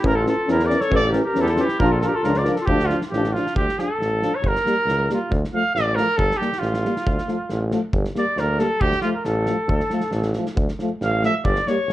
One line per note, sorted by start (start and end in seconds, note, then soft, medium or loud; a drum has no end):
0.00 0.28 A1 loud
0.00 0.13 E3 medium
0.00 0.12 C#4 medium
0.00 0.09 E4 medium
0.04 0.17 A#4 loud
0.04 kick medium
0.09 0.22 E4 medium
0.16 0.26 A4 medium
0.20 0.29 F4 medium
0.25 0.35 E3 medium
0.25 0.34 C#4 medium
0.25 0.48 A4 medium
0.25 snare soft
0.32 0.50 F4 medium
0.47 0.73 E2 medium
0.47 0.57 E3 medium
0.47 0.56 C#4 medium
0.47 snare soft
0.51 0.65 E4 medium
0.51 0.68 A#4 medium
0.60 snare soft
0.64 0.82 A#4 medium
0.64 0.82 D5 medium
0.69 0.80 E3 medium
0.69 0.78 C#4 medium
0.69 snare soft
0.81 0.93 A4 medium
0.81 0.94 C#5 loud
0.81 snare soft
0.90 1.16 A1 loud
0.90 1.00 E3 medium
0.90 0.99 C#4 medium
0.90 1.07 A4 medium
0.90 kick medium
0.96 1.08 D5 loud
1.09 1.21 C#4 medium
1.09 1.22 G4 medium
1.09 1.23 A#4 medium
1.13 1.23 E3 medium
1.13 snare soft
1.24 1.42 G4 medium
1.24 1.42 A#4 medium
1.34 1.61 E2 medium
1.34 1.45 E3 medium
1.34 1.43 C#4 medium
1.34 snare soft
1.40 1.43 E4 medium
1.40 1.57 E4 medium
1.40 1.50 G4 medium
1.40 1.44 A4 medium
1.46 1.61 A4 medium
1.46 snare soft
1.55 1.66 C#4 medium
1.55 1.66 F4 medium
1.55 snare soft
1.59 1.68 E3 medium
1.59 1.79 G4 medium
1.65 1.83 E4 medium
1.65 snare soft
1.79 2.05 A#1 medium
1.79 1.89 F3 medium
1.79 1.90 D4 medium
1.79 1.94 A#4 loud
1.79 kick medium
1.84 1.96 F4 medium
1.92 2.04 F4 medium
1.92 2.01 A4 medium
2.01 2.10 F3 medium
2.01 2.12 D4 medium
2.01 2.10 F4 medium
2.01 2.05 A4 medium
2.01 2.15 A#4 medium
2.01 snare soft
2.09 2.17 G4 medium
2.13 2.29 F4 medium
2.13 2.24 A4 medium
2.23 2.48 C#2 medium
2.23 2.33 F3 soft
2.23 2.34 D4 medium
2.23 2.39 A#4 medium
2.23 snare soft
2.29 2.46 F4 medium
2.34 2.53 D5 medium
2.34 snare soft
2.44 2.55 F3 medium
2.44 2.55 D4 medium
2.44 2.56 A#4 medium
2.44 snare soft
2.54 2.67 A4 medium
2.54 snare soft
2.61 2.71 F4 medium
2.66 2.92 D2 medium
2.66 2.76 F3 medium
2.66 2.88 G4 medium
2.66 kick medium
2.70 2.95 D4 medium
2.70 2.79 D4 medium
2.80 snare soft
2.86 2.99 F4 medium
2.86 snare soft
2.90 2.99 F3 medium
2.90 3.00 D4 medium
2.95 3.03 D4 soft
3.01 snare soft
3.10 3.36 A1 medium
3.10 3.22 F3 medium
3.10 3.35 D4 medium
3.10 3.22 D4 medium
3.10 3.34 G4 medium
3.10 snare soft
3.24 snare soft
3.33 3.43 F3 soft
3.33 3.56 D4 soft
3.33 3.44 D4 soft
3.33 3.55 F4 medium
3.33 snare soft
3.47 snare soft
3.55 3.67 D2 medium
3.55 3.82 G4 medium
3.55 kick medium
3.69 snare soft
3.78 3.86 F3 medium
3.78 3.88 D4 soft
3.78 4.37 A4 medium
3.78 snare soft
3.99 4.23 A1 medium
3.99 snare soft
4.22 4.31 F3 medium
4.22 4.32 D4 medium
4.22 snare soft
4.35 4.49 C#5 medium
4.42 4.55 G1 medium
4.42 kick medium
4.47 5.11 A#4 loud
4.56 snare soft
4.66 4.75 G3 medium
4.66 4.74 A#3 medium
4.66 snare soft
4.86 5.10 C#2 medium
4.86 snare soft
5.09 5.18 G3 medium
5.09 5.18 A#3 medium
5.09 5.32 F4 medium
5.09 snare soft
5.30 5.42 D2 medium
5.30 kick medium
5.44 snare soft
5.53 5.62 F3 medium
5.53 5.62 A3 medium
5.53 5.74 F5 medium
5.75 5.99 A1 medium
5.75 5.97 D5 loud
5.75 snare soft
5.96 6.06 F3 medium
5.96 6.06 A3 soft
5.96 6.18 A#4 loud
5.96 snare soft
6.17 6.30 G1 medium
6.17 6.38 A4 loud
6.17 kick medium
6.31 snare soft
6.37 6.49 G3 medium
6.37 6.49 A#3 soft
6.37 6.60 G4 medium
6.42 snare soft
6.52 snare soft
6.59 6.86 A1 medium
6.59 7.71 F4 medium
6.59 snare soft
6.74 snare soft
6.84 6.93 G3 medium
6.84 6.94 A#3 soft
6.84 snare soft
6.96 snare soft
7.06 7.19 D2 medium
7.06 kick medium
7.18 snare soft
7.27 7.36 F3 medium
7.27 7.36 A3 soft
7.27 snare soft
7.50 7.74 A1 medium
7.50 snare soft
7.70 7.80 F3 medium
7.70 7.81 A3 medium
7.70 snare soft
7.93 8.06 G1 medium
7.93 kick medium
8.05 snare soft
8.16 8.24 G3 medium
8.16 8.25 A#3 medium
8.16 8.42 D5 medium
8.16 snare soft
8.37 8.62 D2 medium
8.37 8.62 A#4 medium
8.37 snare soft
8.59 8.68 G3 medium
8.59 8.68 A#3 medium
8.59 8.83 A4 medium
8.59 snare soft
8.81 8.94 D2 medium
8.81 9.02 G4 loud
8.81 kick medium
8.93 snare soft
9.02 9.13 F3 medium
9.02 9.12 A3 medium
9.02 9.09 F4 medium
9.02 snare soft
9.15 9.27 A#4 medium
9.25 9.50 A1 loud
9.25 10.35 A4 medium
9.25 snare soft
9.46 9.57 F3 medium
9.46 9.56 A3 medium
9.46 snare soft
9.68 9.81 D2 medium
9.68 kick medium
9.80 snare soft
9.90 10.01 F3 medium
9.90 10.01 A3 medium
9.90 snare soft
10.01 snare soft
10.12 10.37 A1 medium
10.12 snare soft
10.23 snare soft
10.34 10.46 F3 medium
10.34 snare soft
10.38 10.46 A3 soft
10.46 snare soft
10.56 10.69 D2 medium
10.56 kick loud
10.69 snare soft
10.79 10.90 F3 medium
10.79 10.90 A3 medium
10.79 snare soft
11.01 11.26 A1 medium
11.01 11.23 F5 medium
11.01 snare soft
11.23 11.33 F3 medium
11.23 11.32 A3 soft
11.23 11.35 E5 medium
11.23 snare soft
11.45 11.57 G1 loud
11.45 11.69 D5 medium
11.45 kick medium
11.56 snare soft
11.67 11.77 G3 medium
11.67 11.76 A#3 medium
11.67 11.93 C#5 medium
11.67 snare soft
11.88 11.93 A1 medium
11.88 snare soft